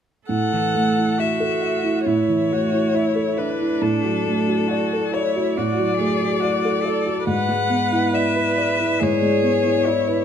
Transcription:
0.27 A2 A4 F#5
0.52 E3
0.75 A3
0.98 E4
1.18 F#4 E5
1.40 A4
1.61 E5
1.84 E4
2.06 A2 E4 C#5
2.28 E3
2.51 A3 F#4
2.72 E4
2.94 E4 E5
3.16 A4
3.37 D4 B4 E5
3.61 E4
3.82 A2 A4
4.04 F#3
4.26 A3
4.48 F#4
4.67 F#4 D5
4.93 A4
5.12 E4 C#5 D5
5.36 F#4
5.57 A2 F#4 D5
5.78 F#3
5.97 A3 G#4
6.21 F#4
6.40 F#4 D5
6.65 A4
6.82 A4
6.86 D5
7.07 F#4
7.24 G#2 B4 F#5
7.49 G#3
7.70 B3
7.92 E4
8.13 D5 E5
8.36 B4
8.58 D5
8.79 E4
9.00 G#2 G#4 C#5
9.22 G#3
9.43 B3
9.64 E4
9.85 E4 D5
10.08 B4

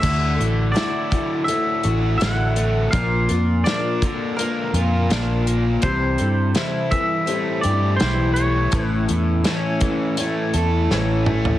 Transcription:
0.00 D2 D3 A3 E4 F#4 A4 E5, kick, closed hi-hat, crash
0.36 A1 E4 F#4 A4
0.41 closed hi-hat
0.72 D3 A3 E4 F#4 D5, closed hi-hat
0.76 A4, snare
1.11 D3 E4 F#4 A4, kick, closed hi-hat
1.44 A3 E4 E5, closed hi-hat
1.49 F#4 A4
1.83 A1 E4 F#4 A4, closed hi-hat
2.18 A1 D3 A3 E4 F#4 F#5, closed hi-hat
2.22 A4, snare
2.56 A3, closed hi-hat
2.91 A#1 A#2 F3 A#3 D4 F4 A#4 F5, kick, closed hi-hat
3.29 F2 A#3 D4 F4 A#4, closed hi-hat
3.64 A#2 F3 A#3 D4 F4 A#4 D5, snare, closed hi-hat
4.02 D3 A#3 D4 F4 A#4, kick, closed hi-hat
4.36 A#3 D4 F4 A#4, closed hi-hat
4.73 F2 A#3 D4 F4 A#4, closed hi-hat
5.10 A#1 A#2 F3 A#3 D4 F4 A#4, snare, closed hi-hat
5.47 A#3, closed hi-hat
5.82 C2 C3 E3 G3 C4 E4 A4 C5, kick, closed hi-hat
6.18 G2 C4 E4 A4, closed hi-hat
6.23 G3
6.54 C3 E3 G3 C4 E4 A4, snare, closed hi-hat
6.91 E3 G3 C4 E4 A4 E5, kick, closed hi-hat
7.26 G3 A3 C4 E4 A4, closed hi-hat
7.61 G2 G3 C4 E4 G4 A4 D5, closed hi-hat
7.96 E3 G3 E4 A4 C5, closed hi-hat
8.01 B1, snare
8.34 A3 C#5, closed hi-hat
8.71 A1 A2 E3 A3 C#4 E4 A4, kick, closed hi-hat
8.86 B4
9.08 E2 A3 C#4 E4 A4, closed hi-hat
9.44 A2 E3 A3 C#4 E4 A4, snare, closed hi-hat
9.81 E3 C#4 E4 A4, kick, closed hi-hat
9.85 A3
10.17 A3 C#4 E4 A4, closed hi-hat
10.54 E2 C#4 E4 A4, closed hi-hat
10.58 A3
10.91 A1 A2 E3 A3 C#4 E4 A4, snare
11.26 A3, mid tom
11.45 floor tom

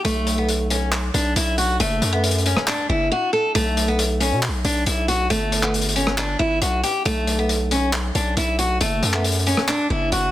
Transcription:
0.05 B1 A3, closed hi-hat
0.27 closed hi-hat
0.38 B3
0.49 closed hi-hat
0.70 C#4, closed hi-hat
0.92 clap, closed hi-hat
1.14 B1 D4, closed hi-hat
1.36 B1 E4, closed hi-hat
1.58 F#4, closed hi-hat
1.80 F#1 A3, closed hi-hat
2.02 F#2, closed hi-hat
2.13 B3
2.24 closed hi-hat
2.31 closed hi-hat
2.38 closed hi-hat
2.46 C#4, closed hi-hat
2.57 cross-stick
2.67 D4, clap, closed hi-hat
2.89 F#1 E4
3.12 F#4
3.33 A4
3.55 B1 A3, closed hi-hat
3.77 closed hi-hat
3.88 B3
3.99 closed hi-hat
4.20 C#4, closed hi-hat
4.32 B2
4.43 clap, closed hi-hat
4.48 B1
4.65 B1 D4, closed hi-hat
4.86 B1 E4, closed hi-hat
5.08 F#4, closed hi-hat
5.30 G1 A3, closed hi-hat
5.52 closed hi-hat
5.63 B3, clap
5.74 closed hi-hat
5.81 closed hi-hat
5.89 closed hi-hat
5.96 C#4, closed hi-hat
6.07 cross-stick
6.18 D4, clap, closed hi-hat
6.39 G1 E4
6.62 B1 F#4, closed hi-hat
6.83 G4, closed hi-hat
7.05 B1 A3, closed hi-hat
7.27 closed hi-hat
7.39 B3
7.49 closed hi-hat
7.71 C#4, closed hi-hat
7.93 clap, closed hi-hat
8.15 B1 D4, closed hi-hat
8.37 B1 E4, closed hi-hat
8.59 F#4, closed hi-hat
8.81 F#1 A3, closed hi-hat
9.03 F#2, closed hi-hat
9.13 B3, clap
9.24 closed hi-hat
9.32 closed hi-hat
9.39 closed hi-hat
9.46 C#4, closed hi-hat
9.57 cross-stick
9.68 D4, clap, closed hi-hat
9.90 F#1 E4
10.12 F#1 F#4, closed hi-hat

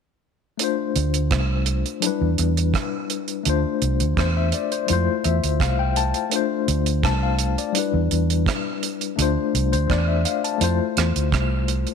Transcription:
0.58 A3 D4, closed hi-hat
0.62 F4 C5
0.96 D2, closed hi-hat
1.14 closed hi-hat
1.31 C2, kick, cross-stick, closed hi-hat
1.66 closed hi-hat
1.86 closed hi-hat
2.00 F#3 D4, closed hi-hat
2.04 G3 E4 B4
2.21 E2
2.38 E2, closed hi-hat
2.57 closed hi-hat
2.74 kick, cross-stick, closed hi-hat
3.10 closed hi-hat
3.28 closed hi-hat
3.43 D2 A3 D4 F4, closed hi-hat
3.49 C5
3.82 C2, closed hi-hat
4.00 D2, closed hi-hat
4.17 E2 C5, kick, cross-stick, closed hi-hat
4.37 E5
4.52 D5, closed hi-hat
4.72 C5, closed hi-hat
4.87 F2 G#3 E4, closed hi-hat
4.91 A3 F4 C5
5.24 E2 E5, closed hi-hat
5.44 D2, closed hi-hat
5.60 C2 F5, kick, cross-stick, closed hi-hat
5.79 G5
5.96 A5, closed hi-hat
6.14 closed hi-hat
6.30 A3 D4, closed hi-hat
6.34 F4 C5
6.68 D2, closed hi-hat
6.86 closed hi-hat
7.03 C2 A5, kick, cross-stick, closed hi-hat
7.23 F5
7.39 closed hi-hat
7.58 D5, closed hi-hat
7.72 G3 D4, closed hi-hat
7.77 E4 B4
7.94 E2
8.11 E2, closed hi-hat
8.30 closed hi-hat
8.46 kick, cross-stick, closed hi-hat
8.83 closed hi-hat
9.01 closed hi-hat
9.16 D2 A3 D4, closed hi-hat
9.20 F4 C5
9.54 C2, closed hi-hat
9.72 D2 C5, closed hi-hat
9.90 E2 D5, kick, cross-stick, closed hi-hat
10.08 E5
10.25 F5, closed hi-hat
10.44 A5, closed hi-hat
10.58 F2 A3 E4, closed hi-hat
10.62 F4 C5
10.97 E2, cross-stick, closed hi-hat
11.16 D2, closed hi-hat
11.32 C2, kick, cross-stick, closed hi-hat
11.68 closed hi-hat
11.87 closed hi-hat

